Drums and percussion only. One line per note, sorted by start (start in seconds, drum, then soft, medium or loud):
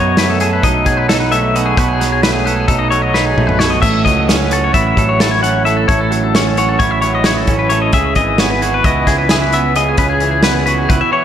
0.17 snare loud
0.17 closed hi-hat medium
0.40 closed hi-hat medium
0.63 kick medium
0.63 closed hi-hat medium
0.86 kick medium
0.86 closed hi-hat medium
1.09 snare loud
1.09 closed hi-hat medium
1.32 closed hi-hat medium
1.56 closed hi-hat medium
1.77 kick medium
1.77 closed hi-hat medium
2.01 snare soft
2.01 closed hi-hat medium
2.23 snare loud
2.23 closed hi-hat medium
2.47 closed hi-hat medium
2.68 kick loud
2.68 closed hi-hat medium
2.92 closed hi-hat medium
3.14 snare medium
3.38 mid tom medium
3.49 mid tom medium
3.60 snare medium
3.83 kick loud
3.83 closed hi-hat medium
3.83 crash medium
4.06 kick medium
4.06 closed hi-hat medium
4.29 snare loud
4.29 closed hi-hat medium
4.51 closed hi-hat medium
4.74 kick medium
4.74 closed hi-hat medium
4.97 kick medium
4.97 closed hi-hat medium
5.20 snare loud
5.20 closed hi-hat medium
5.44 closed hi-hat medium
5.66 closed hi-hat medium
5.89 kick loud
5.89 closed hi-hat medium
6.12 closed hi-hat medium
6.35 snare loud
6.35 closed hi-hat medium
6.57 closed hi-hat medium
6.80 kick medium
6.80 closed hi-hat medium
7.02 closed hi-hat medium
7.24 snare loud
7.24 closed hi-hat medium
7.47 kick medium
7.47 closed hi-hat medium
7.70 closed hi-hat medium
7.93 kick loud
7.93 closed hi-hat medium
8.15 kick medium
8.15 closed hi-hat medium
8.38 snare loud
8.38 closed hi-hat medium
8.62 closed hi-hat medium
8.84 kick loud
8.84 closed hi-hat medium
9.07 kick medium
9.07 snare soft
9.07 closed hi-hat medium
9.29 snare loud
9.29 closed hi-hat medium
9.52 closed hi-hat medium
9.75 closed hi-hat medium
9.97 kick loud
9.97 closed hi-hat medium
10.20 closed hi-hat medium
10.43 snare loud
10.43 closed hi-hat medium
10.67 closed hi-hat medium
10.90 kick loud
10.90 closed hi-hat medium